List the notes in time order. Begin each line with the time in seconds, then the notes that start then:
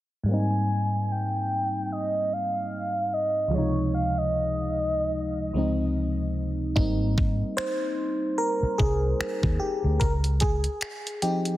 0.23 G#2 G3
0.29 A#3 C4 G#5
0.33 D#4
1.12 G5
1.92 D#5
2.33 F5
3.13 D#5
3.48 C#2 F3
3.53 C3 G#3 C#5
3.58 D#4
3.94 F5
4.18 D#5
5.53 C#2 F3 G#3 C4
5.58 D#4
6.76 G#1 G3 A#3 C4 D#4, kick
7.18 kick
7.57 C5, finger snap
8.38 A#4
8.62 muted fingered electric bass stroke
8.78 C2 G#4, kick
9.20 finger snap, muted fingered electric bass stroke
9.43 D#2, kick
9.60 G4
9.84 D2
10.00 C#2 A#4, kick, closed hi-hat
10.24 closed hi-hat
10.40 G#4, kick, closed hi-hat
10.64 closed hi-hat
10.81 finger snap, closed hi-hat
11.07 closed hi-hat
11.22 F3 C4 D#4 G4, closed hi-hat
11.45 closed hi-hat